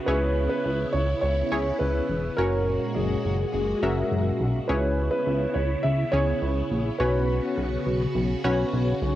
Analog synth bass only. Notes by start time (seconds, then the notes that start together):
0.08 C#2
0.65 C#2
0.94 C#2
1.23 C#2
1.52 C#2
1.81 C#2
2.09 E1
2.38 F#1
2.96 F#1
3.25 F#1
3.54 F#1
3.83 F#1
4.11 F#1
4.40 B1
4.69 C#2
5.27 C#2
5.56 C#2
5.84 C#2
6.13 C#2
6.42 C#2
6.71 A#1
7.00 B1
7.58 B1
7.86 B1
8.15 B1
8.44 B1
8.73 B1
9.02 B1